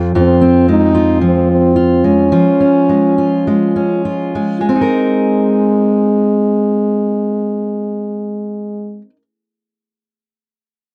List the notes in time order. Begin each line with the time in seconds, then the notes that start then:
Already playing: F2 F3 C4 F4
0.15 F2 C4 F4
0.41 C4
0.68 G#3 D#4
0.95 F4
1.21 F3 C4
1.51 C4
1.76 F4
2.04 G#3 C#4
2.32 F3 F4
2.60 C#4
2.89 G#3
3.18 F4
3.47 G#3
3.76 C#4
4.05 F4
4.35 G#3
4.61 G#3
4.67 G#3 C4
4.75 D#4
4.81 A#4